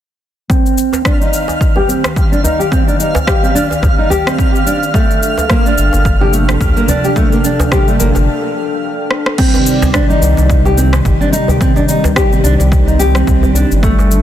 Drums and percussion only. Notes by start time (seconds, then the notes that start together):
0.50 kick, cabasa
0.66 cabasa
0.78 cabasa
0.93 djembe slap, djembe tone, cabasa
1.05 kick, cross-stick, cabasa
1.22 cabasa
1.33 cabasa
1.48 djembe slap, djembe tone, cabasa
1.61 kick, cabasa
1.76 djembe tone
1.88 djembe tone, cabasa
2.04 cross-stick, djembe slap, cabasa
2.16 kick, cabasa
2.33 cabasa
2.44 djembe bass, cabasa
2.60 cabasa
2.72 kick, cabasa
2.88 cabasa
3.00 cabasa
3.15 djembe slap, djembe tone, djembe bass, cabasa
3.27 kick, cross-stick, cabasa
3.44 cabasa
3.55 djembe tone, cabasa
3.71 djembe slap, djembe tone, cabasa
3.83 kick, djembe bass, cabasa
4.10 djembe bass, cabasa
4.27 cross-stick, cabasa
4.39 kick, cabasa
4.56 cabasa
4.67 cabasa
4.83 cabasa
4.94 kick, cabasa
5.11 cabasa
5.23 cabasa
5.38 djembe slap, djembe tone, cabasa
5.50 kick, cross-stick, cabasa
5.66 cabasa
5.78 cabasa
5.93 djembe slap, djembe tone, cabasa
6.05 kick, cabasa
6.21 djembe tone
6.32 djembe tone, cabasa
6.49 cross-stick, djembe slap, cabasa
6.61 kick, cabasa
6.77 cabasa
6.89 djembe bass, cabasa
7.04 cabasa
7.16 kick, cabasa
7.32 cabasa
7.45 cabasa
7.60 djembe slap, djembe tone, djembe bass, cabasa
7.72 kick, cross-stick, cabasa
7.88 cabasa
8.00 djembe tone, cabasa
8.15 djembe slap, djembe tone, cabasa
9.11 cross-stick
9.26 cross-stick
9.38 kick, crash, cabasa
9.54 djembe tone, cabasa
9.67 cabasa
9.82 djembe slap, djembe bass, cabasa
9.94 kick, cross-stick, cabasa
10.09 djembe tone, cabasa
10.22 djembe tone, cabasa
10.37 djembe slap, cabasa
10.50 kick, cabasa
10.65 djembe tone, cabasa
10.78 djembe tone, cabasa
10.93 cross-stick, djembe slap, cabasa
11.05 kick, cabasa
11.21 cabasa
11.33 cabasa
11.48 djembe bass, cabasa
11.61 kick, cabasa
11.76 djembe tone, cabasa
11.89 cabasa
12.04 djembe slap, djembe bass, cabasa
12.16 kick, cross-stick, cabasa
12.32 djembe tone, cabasa
12.45 cabasa
12.60 djembe slap, cabasa
12.72 kick, cabasa
12.88 cabasa
12.99 djembe tone, cabasa
13.15 cross-stick, cabasa
13.27 kick, cabasa
13.43 djembe bass, cabasa
13.56 cabasa
13.72 cabasa
13.83 kick, cabasa
13.99 djembe tone, cabasa
14.11 cabasa